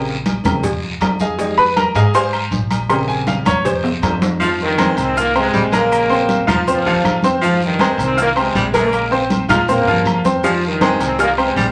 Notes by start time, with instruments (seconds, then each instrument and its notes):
Already playing: upright bass A#1, upright piano C#3 A#3 C4
0.07 high conga, maracas
0.26 cowbell, high conga, low agogo, short guiro, maracas
0.44 upright bass F2, upright piano C#3 A#3 C4, high conga, low conga, low agogo, short guiro, maracas
0.63 cowbell, high conga, low conga, long guiro, maracas
0.82 high conga, maracas
1.01 upright bass F2, cowbell, high conga, low timbale, low agogo, short guiro, maracas
1.20 upright piano G#4 D#5 F5 G#5, high conga, short guiro, maracas
1.39 upright piano G3 G#3 D#4, cowbell, high conga, long guiro, maracas
1.58 upright piano B4 B5, high conga, maracas
1.76 upright piano A#4 A#5, cowbell, high conga, low agogo, short guiro, maracas
1.95 upright bass G#2, upright piano G#4 D#5 F5 G#5, cowbell, high conga, low agogo, short guiro, maracas
2.14 upright piano C5 F5 G#5 C6, cowbell, high conga, long guiro, maracas
2.33 high conga, low agogo, maracas
2.51 upright bass A#1, cowbell, high conga, short guiro, maracas
2.71 cowbell, high conga, low agogo, short guiro, maracas
2.89 upright piano C#3 A#3 C4 C6, cowbell, high conga, low agogo, long guiro, maracas
3.08 upright piano G#5, high conga, maracas
3.27 upright piano F5, cowbell, high conga, low agogo, short guiro, maracas
3.45 upright bass F2, upright piano C#5, high conga, low conga, low agogo, short guiro, maracas
3.65 upright piano C5, cowbell, high conga, low conga, long guiro, maracas
3.84 high conga, high timbale, maracas
4.02 upright bass F2, cowbell, high conga, low timbale, low agogo, short guiro, maracas
4.22 high conga, low timbale, short guiro, maracas
4.40 trombone section G#2 F3, baritone saxophone F3, upright piano F3 F4 F5, high conga, long guiro, maracas
4.60 trombone section G2 D#3, high conga, maracas
4.77 baritone saxophone G#3, upright piano C4 C5 C6, high conga, low agogo, short guiro, maracas
4.97 upright bass C2, trombone section D#3 C4, high conga, low agogo, short guiro, maracas
5.16 trombone section D#3 A#3, upright piano F4 F5 F6, high conga, long guiro, maracas
5.35 trombone section C3 G#3, upright piano C4 C5 C6, high conga, low agogo, maracas
5.53 upright bass A#1, baritone saxophone G3, high conga, short guiro, maracas
5.72 trombone section C#3 A#3, baritone saxophone G#3, upright piano A#3 A#4 A#5, high conga, low agogo, short guiro, maracas
5.92 high conga, low agogo, long guiro, maracas
6.10 upright piano C4 C5 C6, high conga, maracas
6.29 high conga, low agogo, short guiro, maracas
6.47 upright bass F2, trombone section G#2, baritone saxophone F3, upright piano F4 F5 F6, high conga, low conga, low agogo, short guiro, maracas
6.51 trombone section F3
6.67 trombone section A#2 F3, upright piano C4 C5 C6, high conga, long guiro, maracas
6.85 upright bass D#2, baritone saxophone C3, upright piano F3 F4 F5, high conga, maracas
7.04 upright bass F2, high conga, low timbale, low agogo, short guiro, maracas
7.22 upright piano C4 C5 C6, high conga, short guiro, maracas
7.41 trombone section G#2, baritone saxophone F3, upright piano F3 F4 F5, high conga, long guiro, maracas
7.45 trombone section F3
7.60 trombone section G2 D#3, high conga, maracas
7.79 baritone saxophone G#3, upright piano C4 C5 C6, high conga, low agogo, short guiro, maracas
7.98 upright bass C2, trombone section D#3, high conga, low agogo, short guiro, maracas
8.02 trombone section C4
8.17 trombone section D#3, upright piano F4 F5 F6, high conga, long guiro, maracas
8.21 trombone section A#3
8.36 trombone section C3 G#3, upright piano C4 C5 C6, high conga, low agogo, maracas
8.54 upright bass A#1, baritone saxophone G3, high conga, short guiro, maracas
8.74 trombone section C#3 A#3, baritone saxophone G#3, upright piano A#3 A#4 A#5, high conga, low agogo, short guiro, maracas
8.93 high conga, low agogo, long guiro, maracas
9.11 upright piano C4 C5 C6, high conga, maracas
9.30 high conga, low agogo, short guiro, maracas
9.49 upright bass A#2, trombone section C3 G#3, baritone saxophone F3, upright piano F4 F5 F6, high conga, low conga, low agogo, short guiro, maracas
9.68 trombone section C#3 A#3, upright piano C4 C5 C6, high conga, low conga, long guiro, maracas
9.87 upright bass G2, baritone saxophone C3, upright piano F3 F4 F5, high conga, maracas
10.05 upright bass F2, high conga, low agogo, short guiro, maracas
10.25 upright piano C4 C5 C6, high conga, short guiro, maracas
10.44 trombone section G#2 F3, baritone saxophone F3, upright piano F3 F4 F5, cowbell, high conga, long guiro, maracas
10.62 trombone section G2 D#3, high conga, maracas
10.81 baritone saxophone G#3, upright piano C4 C5 C6, cowbell, high conga, low agogo, short guiro, maracas
10.99 upright bass C2, trombone section D#3 C4, cowbell, high conga, low agogo, short guiro, maracas
11.19 trombone section D#3 A#3, upright piano F4 F5 F6, cowbell, high conga, long guiro, maracas
11.38 trombone section C3 G#3, upright piano C4 C5 C6, high conga, low agogo, maracas
11.56 upright bass A#1, baritone saxophone G3, cowbell, high conga, short guiro, maracas